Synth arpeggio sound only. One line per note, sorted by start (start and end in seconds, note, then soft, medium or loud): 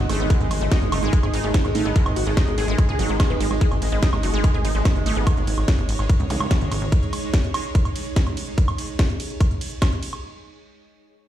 0.09 0.14 A3 loud
0.20 0.25 B3 medium
0.30 0.35 G#3 medium
0.61 0.64 A3 medium
0.72 0.76 D#4 medium
0.92 0.99 A3 medium
1.03 1.07 G#3 loud
1.23 1.30 G#4 medium
1.34 1.38 D#4 medium
1.44 1.47 A3 medium
1.75 1.80 A3 loud
1.85 1.90 B3 medium
1.96 2.00 G#3 medium
2.27 2.30 A3 medium
2.37 2.42 D#4 medium
2.58 2.65 A3 medium
2.68 2.73 G#3 loud
2.89 2.96 G#4 medium
2.99 3.04 F#3 loud
3.09 3.12 G#3 medium
3.20 3.27 G#3 medium
3.30 3.35 G#3 medium
3.40 3.43 G#3 medium
3.61 3.66 G#3 medium
3.92 3.97 G#3 medium
4.03 4.07 D#4 medium
4.23 4.30 A3 medium
4.34 4.38 G#3 loud
4.54 4.62 G#4 medium
4.65 4.69 D#4 medium
4.75 4.78 A3 medium
5.06 5.11 A3 loud
5.16 5.21 B3 medium